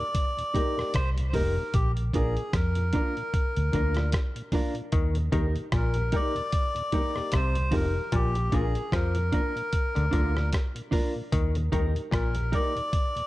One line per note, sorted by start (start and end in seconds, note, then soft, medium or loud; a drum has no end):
0.00 0.98 D5 loud
0.15 kick loud
0.15 closed hi-hat medium
0.37 0.43 D#2 soft
0.37 0.44 A#2 soft
0.37 closed hi-hat soft
0.53 0.62 G3 medium
0.53 0.62 A#3 medium
0.53 0.73 A#3 medium
0.53 0.74 D#4 medium
0.53 0.73 D#4 medium
0.53 0.63 D#4 medium
0.53 0.74 G4 medium
0.53 0.75 G4 medium
0.53 0.74 A#4 medium
0.53 0.75 A#4 medium
0.53 kick medium
0.53 closed hi-hat medium
0.77 0.84 D#2 medium
0.77 0.83 A#2 medium
0.77 0.91 A#3 medium
0.77 0.91 D#4 medium
0.77 0.92 G4 medium
0.77 0.92 A#4 medium
0.77 cross-stick medium
0.94 1.33 C2 medium
0.94 1.10 C5 medium
0.94 kick medium
0.94 cross-stick loud
0.94 closed hi-hat loud
1.17 1.23 D#2 medium
1.17 1.23 A#2 medium
1.17 closed hi-hat medium
1.29 1.35 C5 medium
1.33 1.55 F1 loud
1.33 1.42 G3 medium
1.33 1.53 A#3 medium
1.33 1.43 A#3 medium
1.33 1.54 D#4 medium
1.33 1.53 D#4 medium
1.33 1.43 D#4 medium
1.33 1.53 G4 medium
1.33 1.54 G4 medium
1.33 1.75 A#4 medium
1.33 1.53 A#4 loud
1.33 1.55 A#4 medium
1.33 kick medium
1.33 open hi-hat medium
1.56 1.63 D#2 medium
1.56 1.63 A#2 medium
1.74 2.12 A#1 loud
1.74 1.92 G4 medium
1.74 kick loud
1.74 closed hi-hat medium
1.96 2.03 A#2 medium
1.96 closed hi-hat soft
2.14 2.36 A#1 medium
2.14 2.22 F3 medium
2.14 2.33 A#3 medium
2.14 2.22 A#3 medium
2.14 2.33 D4 medium
2.14 2.23 D4 medium
2.14 2.34 D4 medium
2.14 2.33 F4 medium
2.14 2.35 F4 medium
2.14 2.55 G#4 medium
2.14 2.33 A#4 medium
2.14 2.35 A#4 medium
2.14 kick loud
2.14 closed hi-hat medium
2.36 2.43 A#2 medium
2.36 closed hi-hat soft
2.53 2.92 F2 medium
2.53 4.10 A#4 medium
2.53 kick loud
2.53 cross-stick loud
2.53 closed hi-hat medium
2.75 2.83 A#2 medium
2.75 2.83 F4 soft
2.75 2.83 A#4 soft
2.75 closed hi-hat medium
2.93 3.02 F3 medium
2.93 3.12 A#3 medium
2.93 3.02 A#3 medium
2.93 3.13 D4 medium
2.93 3.14 D4 medium
2.93 3.02 D4 medium
2.93 3.13 F4 medium
2.93 3.14 F4 medium
2.93 3.13 A#4 medium
2.93 3.14 A#4 loud
2.93 kick medium
2.93 closed hi-hat medium
3.17 3.23 A#2 medium
3.17 closed hi-hat soft
3.34 kick loud
3.34 closed hi-hat medium
3.56 3.73 D2 medium
3.56 3.63 A#2 soft
3.56 closed hi-hat soft
3.72 4.12 D2 loud
3.72 3.82 F3 medium
3.72 3.92 A#3 medium
3.72 3.82 A#3 medium
3.72 3.92 D4 medium
3.72 3.82 D4 medium
3.72 3.94 D4 medium
3.72 3.92 F4 medium
3.72 3.94 F4 loud
3.72 3.93 A#4 medium
3.72 3.95 A#4 loud
3.72 kick medium
3.72 closed hi-hat medium
3.95 4.02 A#2 medium
3.95 4.11 A#3 medium
3.95 4.11 D4 medium
3.95 4.11 F4 medium
3.95 4.11 A#4 medium
3.95 cross-stick medium
3.95 closed hi-hat soft
4.12 kick loud
4.12 cross-stick loud
4.12 closed hi-hat loud
4.35 4.42 A#2 medium
4.35 closed hi-hat soft
4.52 4.61 F3 medium
4.52 4.61 A#3 medium
4.52 4.72 A#3 medium
4.52 4.62 D4 medium
4.52 4.72 D4 medium
4.52 4.73 D4 medium
4.52 4.73 F4 medium
4.52 4.74 F4 medium
4.52 4.73 A#4 medium
4.52 4.74 A#4 medium
4.52 kick loud
4.52 open hi-hat medium
4.74 4.82 A#2 medium
4.74 closed hi-hat soft
4.92 5.32 D#2 medium
4.92 5.17 D#3 medium
4.92 kick loud
4.92 closed hi-hat medium
5.14 5.22 D#2 medium
5.14 5.22 A#2 medium
5.14 closed hi-hat soft
5.32 5.55 D#2 medium
5.32 5.46 D#3 medium
5.32 5.41 G3 medium
5.32 5.41 A#3 medium
5.32 5.52 A#3 medium
5.32 5.41 D#4 medium
5.32 5.53 D#4 medium
5.32 5.52 D#4 medium
5.32 5.53 G4 medium
5.32 5.52 G4 medium
5.32 5.53 A#4 medium
5.32 5.54 A#4 loud
5.32 kick loud
5.32 closed hi-hat medium
5.55 5.62 D#2 medium
5.55 5.62 A#2 medium
5.55 closed hi-hat soft
5.72 6.11 A#1 medium
5.72 5.97 A#2 medium
5.72 kick loud
5.72 cross-stick loud
5.72 closed hi-hat medium
5.76 6.16 A#4 medium
5.94 6.02 D#2 medium
5.94 6.02 A#2 medium
5.94 6.03 G4 soft
5.94 6.03 A#4 soft
5.94 closed hi-hat medium
6.12 6.21 G3 medium
6.12 6.32 A#3 medium
6.12 6.21 A#3 medium
6.12 6.33 D#4 loud
6.12 6.32 D#4 medium
6.12 6.22 D#4 medium
6.12 6.32 G4 medium
6.12 6.34 G4 medium
6.12 6.32 A#4 loud
6.12 6.34 A#4 medium
6.12 7.38 D5 loud
6.12 kick medium
6.12 closed hi-hat medium
6.35 6.42 D#2 medium
6.35 6.42 A#2 medium
6.35 closed hi-hat soft
6.52 kick loud
6.52 closed hi-hat loud
6.75 6.82 D#2 medium
6.75 6.82 A#2 medium
6.75 closed hi-hat soft
6.92 7.01 G3 medium
6.92 7.12 A#3 medium
6.92 7.01 A#3 medium
6.92 7.12 D#4 medium
6.92 7.13 D#4 medium
6.92 7.02 D#4 medium
6.92 7.12 G4 medium
6.92 7.14 G4 loud
6.92 7.12 A#4 medium
6.92 7.14 A#4 loud
6.92 kick medium
6.92 closed hi-hat medium
7.15 7.22 D#2 medium
7.15 7.22 A#2 medium
7.15 7.30 A#3 medium
7.15 7.30 D#4 medium
7.15 7.31 G4 medium
7.15 7.31 A#4 medium
7.15 cross-stick medium
7.32 7.72 C2 medium
7.32 7.56 C3 medium
7.32 kick loud
7.32 cross-stick loud
7.32 closed hi-hat medium
7.36 7.76 C5 loud
7.55 7.62 D#2 medium
7.55 7.62 A#2 medium
7.55 closed hi-hat medium
7.71 7.94 F1 loud
7.71 7.86 F2 medium
7.71 7.81 G3 medium
7.71 7.92 A#3 medium
7.71 7.81 A#3 medium
7.71 7.92 D#4 medium
7.71 7.81 D#4 medium
7.71 7.93 G4 medium
7.71 7.92 G4 medium
7.71 7.92 A#4 medium
7.71 7.93 A#4 medium
7.71 kick loud
7.71 open hi-hat medium
7.75 8.15 A#4 medium
7.95 8.02 D#2 medium
7.95 8.02 A#2 medium
8.12 8.51 A#1 loud
8.12 8.36 A#2 loud
8.12 8.55 G4 loud
8.12 kick loud
8.12 closed hi-hat loud
8.35 8.42 A#2 medium
8.35 closed hi-hat soft
8.52 8.74 A#1 medium
8.52 8.66 A#2 medium
8.52 8.61 F3 medium
8.52 8.72 A#3 medium
8.52 8.61 A#3 medium
8.52 8.72 D4 medium
8.52 8.73 D4 loud
8.52 8.62 D4 medium
8.52 8.72 F4 medium
8.52 8.74 F4 loud
8.52 8.95 G#4 medium
8.52 8.72 A#4 medium
8.52 8.74 A#4 loud
8.52 kick medium
8.52 closed hi-hat medium
8.75 8.82 A#2 medium
8.75 closed hi-hat soft
8.92 9.31 F2 medium
8.92 9.17 F3 medium
8.92 10.50 A#4 medium
8.92 kick loud
8.92 cross-stick loud
8.92 closed hi-hat medium
9.15 9.22 A#2 medium
9.15 9.22 F4 soft
9.15 9.22 A#4 soft
9.15 closed hi-hat medium
9.31 9.41 F3 medium
9.31 9.51 A#3 medium
9.31 9.42 A#3 medium
9.31 9.52 D4 medium
9.31 9.53 D4 loud
9.31 9.42 D4 medium
9.31 9.52 F4 medium
9.31 9.53 F4 medium
9.31 9.52 A#4 medium
9.31 9.54 A#4 loud
9.31 kick medium
9.31 closed hi-hat medium
9.56 9.62 A#2 medium
9.56 closed hi-hat soft
9.73 kick medium
9.73 closed hi-hat medium
9.95 10.13 D2 medium
9.95 10.03 A#2 soft
9.95 10.06 D3 medium
9.95 closed hi-hat soft
10.11 10.51 D2 medium
10.11 10.37 D3 medium
10.11 10.21 F3 medium
10.11 10.32 A#3 medium
10.11 10.22 A#3 medium
10.11 10.32 D4 medium
10.11 10.22 D4 medium
10.11 10.32 F4 medium
10.11 10.33 F4 medium
10.11 10.32 A#4 medium
10.11 10.33 A#4 loud
10.11 kick medium
10.11 closed hi-hat medium
10.34 10.42 A#2 medium
10.34 10.50 A#3 medium
10.34 10.50 D4 medium
10.34 10.50 F4 medium
10.34 10.50 A#4 medium
10.34 cross-stick medium
10.53 kick loud
10.53 cross-stick loud
10.53 closed hi-hat medium
10.75 10.82 A#2 medium
10.75 closed hi-hat medium
10.91 11.01 F3 medium
10.91 11.12 A#3 medium
10.91 11.02 A#3 medium
10.91 11.12 D4 medium
10.91 11.02 D4 medium
10.91 11.12 F4 medium
10.91 11.13 A#4 medium
10.91 11.12 A#4 loud
10.91 kick loud
10.91 open hi-hat medium
11.16 11.22 A#2 medium
11.32 11.71 D#2 loud
11.32 11.56 D#3 medium
11.32 kick loud
11.32 closed hi-hat loud
11.55 11.62 D#2 medium
11.55 11.62 A#2 medium
11.55 closed hi-hat soft
11.72 11.94 D#2 medium
11.72 11.86 D#3 medium
11.72 11.81 G3 medium
11.72 11.91 A#3 medium
11.72 11.81 A#3 medium
11.72 11.91 D#4 medium
11.72 11.92 D#4 medium
11.72 11.81 D#4 medium
11.72 11.92 G4 medium
11.72 11.93 G4 medium
11.72 11.92 A#4 medium
11.72 11.93 A#4 loud
11.72 kick loud
11.72 closed hi-hat medium
11.95 12.02 D#2 medium
11.95 12.02 A#2 medium
11.95 closed hi-hat soft
12.11 12.51 A#1 medium
12.11 12.36 A#2 medium
12.11 12.54 A#4 medium
12.11 kick loud
12.11 cross-stick loud
12.11 closed hi-hat medium
12.35 12.42 D#2 medium
12.35 12.42 A#2 medium
12.35 12.42 G4 soft
12.35 12.42 A#4 soft
12.35 closed hi-hat medium
12.51 12.61 G3 medium
12.51 12.71 A#3 medium
12.51 12.61 A#3 medium
12.51 12.71 D#4 medium
12.51 12.72 D#4 medium
12.51 12.61 D#4 medium
12.51 12.71 G4 medium
12.51 12.73 G4 medium
12.51 12.72 A#4 medium
12.51 12.73 A#4 medium
12.51 13.27 D5 loud
12.51 kick medium
12.51 closed hi-hat medium
12.75 12.82 D#2 medium
12.75 12.82 A#2 medium
12.75 closed hi-hat soft
12.93 kick loud
12.93 closed hi-hat medium
13.16 13.22 D#2 medium
13.16 13.22 A#2 soft
13.16 closed hi-hat soft